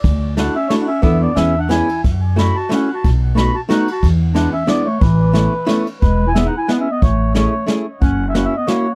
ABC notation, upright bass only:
X:1
M:3/4
L:1/8
Q:"Swing" 1/4=181
K:A
V:1 name="Upright bass" clef=bass
D,,4 z2 | E,,2 E,,4 | F,,4 z2 | B,,,4 z2 |
E,,4 z2 | A,,,4 z2 | [K:E] E,,,4 z2 | A,,,4 z2 |
F,,,4 z2 |]